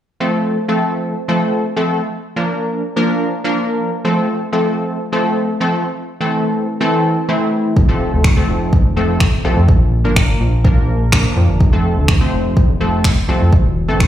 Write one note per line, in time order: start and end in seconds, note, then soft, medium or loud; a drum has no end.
0.20 0.57 F3 medium
0.20 0.57 A3 medium
0.20 0.57 C4 medium
0.20 0.57 A4 medium
0.68 1.14 F3 medium
0.68 1.14 A3 medium
0.68 1.14 C4 medium
0.68 1.15 A4 medium
1.28 1.65 F3 medium
1.28 1.65 A3 medium
1.28 1.65 C4 medium
1.28 1.65 A4 loud
1.76 2.01 F3 medium
1.76 2.01 A3 medium
1.76 2.01 C4 medium
1.76 2.01 A4 loud
2.36 2.82 F3 medium
2.36 2.82 A#3 medium
2.36 2.82 D4 medium
2.36 2.82 A#4 medium
2.96 3.33 F3 loud
2.96 3.33 A#3 medium
2.96 3.33 D4 medium
2.96 3.33 A#4 loud
3.44 3.90 F3 medium
3.44 3.90 A#3 medium
3.44 3.90 D4 medium
3.44 3.91 A#4 loud
4.04 4.41 F3 medium
4.04 4.41 A3 medium
4.04 4.41 C4 medium
4.04 4.41 A4 loud
4.52 4.98 F3 medium
4.52 4.98 A3 medium
4.52 4.99 C4 medium
4.52 4.99 A4 medium
5.12 5.49 F3 medium
5.12 5.49 A3 medium
5.12 5.49 C4 medium
5.12 5.49 A4 loud
5.60 5.85 F3 medium
5.60 5.85 A3 medium
5.60 5.85 C4 medium
5.60 5.85 A4 loud
6.20 6.66 E3 medium
6.20 6.66 A3 medium
6.20 6.66 C4 medium
6.20 6.67 A4 medium
6.80 7.17 E3 medium
6.80 7.17 A3 medium
6.80 7.17 C4 medium
6.80 7.17 A4 loud
7.28 7.74 E3 medium
7.28 7.74 A3 medium
7.28 7.75 C4 medium
7.28 7.75 E4 loud
7.77 8.14 F1 loud
7.77 kick loud
7.88 8.25 F3 medium
7.88 8.25 A3 medium
7.88 8.25 C4 medium
7.88 8.25 A4 medium
8.13 8.42 D2 medium
8.24 finger snap loud
8.24 kick loud
8.36 8.82 F3 medium
8.36 8.82 A3 medium
8.36 8.82 C4 medium
8.36 8.83 A4 medium
8.49 8.78 F1 medium
8.73 kick loud
8.85 9.34 F1 medium
8.96 9.33 F3 medium
8.96 9.33 A3 medium
8.96 9.33 C4 medium
8.96 9.33 A4 medium
9.20 finger snap loud
9.20 kick loud
9.44 9.55 C2 loud
9.44 9.68 F3 medium
9.44 9.69 A3 medium
9.44 9.69 C4 medium
9.44 9.69 A4 loud
9.57 9.67 F2 medium
9.69 10.06 A#1 loud
9.69 kick loud
10.04 10.35 G1 medium
10.04 10.50 F3 medium
10.04 10.50 A#3 medium
10.04 10.50 D4 medium
10.04 10.51 A#4 medium
10.16 finger snap loud
10.16 kick loud
10.41 10.70 A#1 medium
10.64 11.01 F3 loud
10.64 11.01 A#3 medium
10.64 11.01 D4 medium
10.64 11.01 A#4 loud
10.64 kick loud
10.77 11.26 A#1 medium
11.12 11.58 F3 medium
11.12 11.58 A#3 medium
11.12 11.59 D4 medium
11.12 11.59 A#4 loud
11.12 finger snap loud
11.12 kick loud
11.37 11.47 F2 loud
11.49 11.59 G1 medium
11.60 11.98 F1 loud
11.60 kick loud
11.72 12.09 F3 medium
11.72 12.09 A3 medium
11.72 12.09 C4 medium
11.72 12.09 A4 medium
11.97 12.26 D2 medium
12.08 finger snap loud
12.08 kick loud
12.20 12.66 F3 medium
12.20 12.66 A3 medium
12.20 12.66 C4 medium
12.20 12.67 C5 medium
12.33 12.62 F1 medium
12.57 kick loud
12.69 13.18 F1 medium
12.80 13.17 F3 medium
12.80 13.17 A3 medium
12.80 13.17 C4 medium
12.80 13.17 A4 medium
13.04 finger snap loud
13.04 kick medium
13.28 13.39 C2 medium
13.28 13.52 F3 medium
13.28 13.53 A3 medium
13.28 13.53 C4 medium
13.28 13.53 A4 loud
13.41 13.51 F2 medium
13.53 13.90 E1 medium
13.53 kick loud
13.88 14.07 G1 medium
13.88 14.07 E3 medium
13.88 14.07 A3 medium
13.88 14.07 C4 medium
13.88 14.07 A4 medium
14.00 finger snap loud
14.00 kick loud